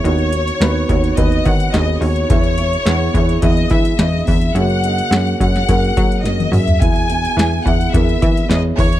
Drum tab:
HH |xxxxx-xxxxxxx-ox|xxxxx-xxxxxxx-ox|xxxxxxxxxxxxxxox|xxxxx-xxxxxxx-ox|
SD |----o-------o---|----o-------o---|----o--o----o---|----o-------o---|
T1 |----------------|----------------|-------------o--|----------------|
T2 |----------------|----------------|--------------o-|----------------|
FT |----------------|----------------|---------------o|----------------|
BD |------o-o-o-----|o-----o-o-o---o-|------o-o-o-----|o-----o-o-o---o-|